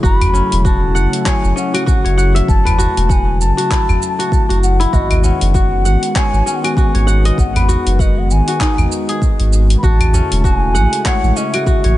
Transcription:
Already playing: C#3 F#3 A3 E4 G#4
0.03 F#1 F#4 B5, kick, shaker
0.21 open hi-hat, udu, claves, shaker
0.33 C#4, udu, shaker
0.52 E1, open hi-hat, shaker
0.65 F#4 A5, kick, shaker
0.95 F#1 F#5, shaker
1.13 open hi-hat, shaker
1.25 C#5 G#5, kick, clap, shaker
1.44 F#1, shaker
1.56 C#4 F#5, shaker
1.74 F#4, open hi-hat, claves, shaker
1.86 F#4, kick, shaker
2.04 F#1 C#5, open hi-hat
2.17 F#5, shaker
2.35 E5, open hi-hat, shaker
2.48 F#1 A5, kick, shaker
2.65 B4, open hi-hat, udu, claves, shaker
2.78 F#4, udu, shaker
2.97 E1, open hi-hat, shaker
3.09 F#5 G#5, kick, shaker
3.41 F#1 A5, shaker
3.57 F#4, open hi-hat, shaker
3.70 E4, kick, clap, shaker
3.88 F#1, udu, claves, shaker
4.02 shaker
4.19 F#4, open hi-hat, shaker
4.32 kick, shaker
4.49 F#1 F#4, open hi-hat
4.63 F#5, shaker
4.80 E4, open hi-hat, shaker
4.93 G#1 D#3 G#3 B3 F#4 D#5, kick, shaker
5.11 open hi-hat, udu, claves, shaker
5.24 C#4 F#5, udu, shaker
5.41 F#1, open hi-hat, shaker
5.54 F#4, kick, shaker
5.85 G#1 F#5, shaker
6.03 open hi-hat, shaker
6.15 C#5 G#5, kick, clap, shaker
6.33 G#1, shaker
6.46 C#4 G#5, shaker
6.55 F#5
6.64 F#4 G#5, open hi-hat, claves, shaker
6.77 F#4, kick, shaker
6.94 G#1 C#5, open hi-hat
7.07 F#5, shaker
7.25 D#5, open hi-hat, shaker
7.38 G#1 F#5, kick, shaker
7.56 B4, open hi-hat, udu, claves, shaker
7.68 F#4, udu, shaker
7.86 F#1, open hi-hat, shaker
7.99 D#5 F#5, kick, shaker
8.19 F#5
8.30 G#1 G#5, shaker
8.48 F#4, open hi-hat, shaker
8.60 D#4, kick, clap, shaker
8.78 G#1, udu, claves, shaker
8.92 shaker
9.09 G#4, open hi-hat, shaker
9.22 kick, shaker
9.40 G#1, open hi-hat
9.53 shaker
9.70 open hi-hat, shaker
9.78 B5
9.83 A1 C#3 G#3 A3 E4 F#4 A5, kick, shaker
10.00 open hi-hat, udu, claves, shaker
10.13 C#4, udu, shaker
10.32 E1, open hi-hat, shaker
10.44 F#4 A5, kick, shaker
10.55 G#5
10.75 A1 F#5, shaker
10.93 open hi-hat, shaker
11.05 C#5 F#5, kick, clap, shaker
11.23 A1, shaker
11.36 C#4 E5, shaker
11.54 F#4, open hi-hat, claves, shaker
11.67 F#4, kick, shaker
11.84 A1 C#5, open hi-hat

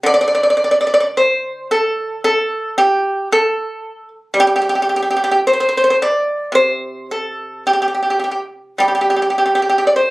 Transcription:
0.03 D3 D5
0.14 D5
0.21 D5
0.28 D5
0.35 D5
0.43 D5
0.50 D5
0.57 D5
0.64 D5
0.71 D5
0.81 D5
0.87 D5
0.94 D5
1.00 D5
1.17 C5
1.71 A4
2.24 A4
2.78 G4
3.32 A4
4.34 G3
4.40 G4
4.47 G4
4.56 G4
4.62 G4
4.69 G4
4.75 G4
4.82 G4
4.89 G4
4.96 G4
5.03 G4
5.11 G4
5.17 G4
5.24 G4
5.31 G4
5.47 C5
5.53 C5
5.60 C5
5.69 C5
5.77 C5
5.84 C5
5.90 C5
6.02 D5
6.52 C3 C5
7.11 A4
7.67 G4
7.73 G4
7.82 G4
7.88 G4
7.94 G4
8.03 G4
8.10 G4
8.19 G4
8.24 G4
8.31 G4
8.78 G3 G4
8.88 G4
8.95 G4
9.01 G4
9.10 G4
9.16 G4
9.22 G4
9.30 G4
9.38 G4
9.46 G4
9.55 G4
9.62 G4
9.70 G4
9.78 G4
9.87 D5
9.96 C5

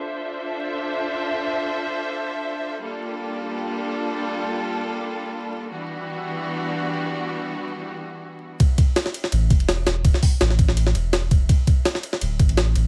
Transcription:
Already playing: D4 F4 A4 C5 E5
2.82 G3 A#3 D4 F4 A4
5.71 E3 G3 B3 D4 F#4
8.60 kick, ride
8.78 kick, ride
8.96 snare, ride
9.06 snare
9.14 ride
9.24 snare
9.32 A1, ride
9.50 E1, kick, ride
9.60 ride
9.69 snare, ride
9.86 E1, snare, ride
10.04 E1, kick, ride
10.14 snare
10.23 kick, open hi-hat
10.41 A1, snare, ride
10.51 snare
10.59 kick, ride
10.69 snare
10.77 ride
10.87 snare
10.95 E1, ride
11.13 snare, ride
11.31 kick, ride
11.49 kick, ride
11.67 kick, ride
11.85 snare, ride
11.95 snare
12.03 ride
12.13 snare
12.21 D1, ride
12.39 A1, kick, ride
12.49 ride
12.57 snare, ride
12.75 A1, ride

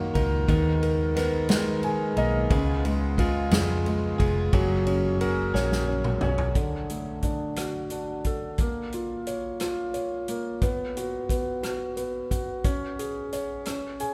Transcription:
Already playing: F#2 D#3 F#3 A#3 D#4 F4 F#4 A#4
0.14 C#2 D#4 F4 A#4, kick, ride
0.48 D#2 D#3 G#3 B3 D#4 A#4, kick, ride
0.83 A#4, ride
1.15 G#3 B3 D#4 A#4, snare, ride
1.49 F#2 D#3 G#3 B3 D#4 A#4, snare, ride
1.83 G#4 G#5, ride
2.17 B1 A#3 B3 D#4 A#4 D#5, ride
2.50 C#2 C#3 G#3 B3 F4 G#4, kick, ride
2.85 G#3, ride
3.17 G#3 B3 F4 G#4, kick, ride
3.51 F2 C#3 G#3 B3 F4 G#4, snare, ride
3.86 G#3, ride
4.18 F1 B3 F4 G#4, kick, ride
4.53 F#1 F#3 A#3 C#4 F#4 G#4, kick, ride
4.87 C#4, ride
5.20 A#3 C#4 F#4 G#4 A#4, ride
5.54 A#1 F#3 A#3 C#4 F#4 G#4 C#5, snare
5.72 snare
5.89 C#4
6.04 mid tom
6.21 B1 C#4 F#4 G#4 C#5, mid tom
6.38 floor tom
6.55 D3, kick, closed hi-hat
6.89 A3, closed hi-hat
7.22 D4, kick, closed hi-hat
7.56 F#4, cross-stick, closed hi-hat
7.90 D4, closed hi-hat
8.24 A4, kick, closed hi-hat
8.58 A#3, kick, closed hi-hat
8.92 F4, closed hi-hat
9.27 C#5, closed hi-hat
9.60 F4, cross-stick, closed hi-hat
9.94 C#5, closed hi-hat
10.28 A#3, closed hi-hat
10.61 B3, kick, closed hi-hat
10.97 F#4, closed hi-hat
11.29 B3, kick, closed hi-hat
11.63 F#4, cross-stick, closed hi-hat
11.97 B3, closed hi-hat
12.31 F#4, kick, closed hi-hat
12.64 C#4, kick, closed hi-hat
12.99 G#4, closed hi-hat
13.32 C#5, cross-stick, closed hi-hat
13.65 C#4, cross-stick, closed hi-hat
14.00 G#4 G#5, closed hi-hat

